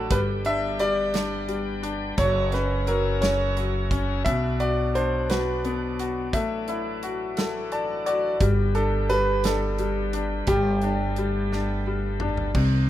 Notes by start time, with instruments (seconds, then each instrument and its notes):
Already playing: upright piano A3 E4 F#4, tonewheel organ D4, grand piano A4
0.10 upright bass G1, upright piano G3, tonewheel organ B3 G4, grand piano B4, kick, closed hi-hat
0.45 upright piano D4, grand piano E5, closed hi-hat
0.79 upright piano G3, grand piano D5, closed hi-hat
1.14 upright piano D4, snare, closed hi-hat
1.48 upright piano G3, closed hi-hat
1.83 upright piano D4, closed hi-hat
2.17 upright bass F#1, tonewheel organ F#3 C#4 E4 G#4 A#5, upright piano F#3, grand piano C#5, kick, closed hi-hat
2.52 upright piano C#4, grand piano B4, snare, closed hi-hat
2.87 upright piano F#3, grand piano A#4, closed hi-hat
3.21 upright piano C#4, grand piano C#5, snare, closed hi-hat
3.57 upright piano F#3, closed hi-hat
3.91 upright piano C#4, kick, closed hi-hat
4.25 upright bass B1, upright piano B2, tonewheel organ B2 D4, grand piano E5, kick, closed hi-hat
4.60 upright piano F#4, grand piano D5, closed hi-hat
4.95 upright piano D4, grand piano C5, closed hi-hat
5.30 upright piano F#4, grand piano B4, snare, closed hi-hat
5.65 upright piano B3, closed hi-hat
5.99 upright piano F#4, closed hi-hat
6.33 upright bass A1, tonewheel organ E3 F#3, upright piano A3, grand piano E5, kick, closed hi-hat
6.68 upright piano E4, closed hi-hat
7.03 upright piano F#4, closed hi-hat
7.37 upright piano A4, snare, closed hi-hat
7.72 upright piano D5 A5, closed hi-hat
8.06 upright piano F#4 D5, closed hi-hat
8.41 upright bass G1, tonewheel organ D3 G3 B3, upright piano G3, kick, closed hi-hat
8.75 upright piano D4, grand piano A4, closed hi-hat
9.09 upright piano G3, grand piano B4, closed hi-hat
9.44 upright piano D4, grand piano A4, snare, closed hi-hat
9.79 upright piano G3, closed hi-hat
10.13 upright piano D4, closed hi-hat
10.47 upright bass G1, upright piano G3, tonewheel organ A3, grand piano G4, kick, closed hi-hat
10.82 upright piano D4, closed hi-hat
11.16 upright piano G3, closed hi-hat
11.53 upright piano D4, snare
11.87 upright piano G3
12.20 upright piano D4, mid tom
12.37 floor tom
12.55 upright bass C2, upright piano C3, tonewheel organ D#3 G3 C4, kick, crash